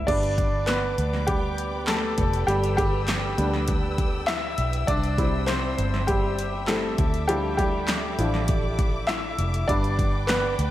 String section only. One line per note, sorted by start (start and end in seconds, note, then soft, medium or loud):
0.07 4.84 B4 medium
0.07 4.84 D5 medium
0.07 6.94 G5 medium
0.07 2.46 D6 medium
2.49 6.95 E6 medium
4.88 6.96 C5 medium
4.88 9.65 E5 medium
6.99 9.66 A4 medium
6.99 9.66 D5 medium
6.99 10.71 D6 medium
9.69 10.71 B4 medium
9.69 10.71 D5 medium
9.69 10.71 G5 medium